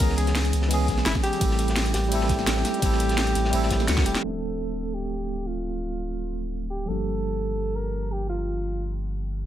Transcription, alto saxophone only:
0.00 0.17 A#4 loud
0.17 0.50 G#4 medium
1.06 1.14 E4 loud
1.23 1.90 G4 loud
1.94 3.84 G4 loud
3.88 4.05 F#4 medium
4.06 4.25 G4 medium
4.23 4.95 A4 medium
4.94 5.48 G4 medium
5.47 6.53 F4 medium
6.70 6.89 G4 medium
6.88 7.78 A4 loud
7.76 8.13 A#4 loud
8.12 8.29 G4 medium
8.29 8.96 F4 medium

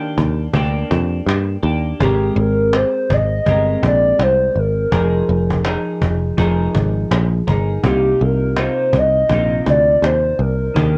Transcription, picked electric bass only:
0.18 0.47 D#2 medium
0.54 0.83 D2 loud
0.91 1.20 F2 medium
1.26 1.56 G2 medium
1.63 1.93 D#2 medium
2.00 2.30 G#1 loud
2.36 2.83 G#1 loud
3.10 3.39 G#1 medium
3.46 3.76 G1 medium
3.83 4.12 A#1 medium
4.19 4.49 C2 medium
4.56 4.85 G#1 medium
4.92 5.21 F1 medium
5.29 5.76 F1 medium
6.01 6.31 F1 medium
6.38 6.67 F1 loud
6.75 7.04 G#1 medium
7.11 7.40 A#1 medium
7.48 7.77 G1 medium
7.83 8.13 C2 loud
8.21 8.68 C2 medium
8.93 9.23 C2 medium
9.29 9.59 A#1 medium
9.66 9.96 D2 medium
10.02 10.32 D#2 medium
10.39 10.69 C2 medium
10.76 10.98 D#2 medium

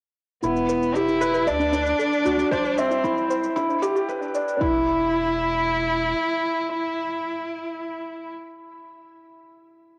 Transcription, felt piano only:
0.43 0.68 E4 medium
0.96 1.21 G4 medium
1.21 1.46 B4 medium
1.47 1.72 D5 medium
1.74 1.99 D4 medium
2.25 2.41 F#4 medium
2.52 2.77 C5 medium
2.78 3.03 E5 medium
3.04 3.29 E4 medium
3.56 3.81 E4 medium
3.82 4.07 G4 loud
4.09 4.24 B4 medium
4.35 4.60 D4 medium
4.61 4.85 E4 medium

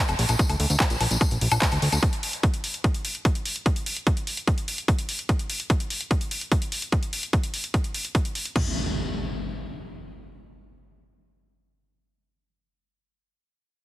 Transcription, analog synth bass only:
0.09 0.15 F1 medium
0.19 0.25 A#1 loud
0.29 0.35 A#1 medium
0.49 0.56 D2 medium
0.60 0.66 D2 loud
0.70 0.76 D2 medium
0.90 0.97 A#1 medium
1.01 1.07 A#1 medium
1.11 1.17 A#1 loud
1.31 1.37 A#1 medium
1.41 1.48 A#1 loud
1.52 1.58 A#1 medium
1.72 1.78 D2 medium
1.82 1.89 D2 loud
1.92 1.99 D2 medium

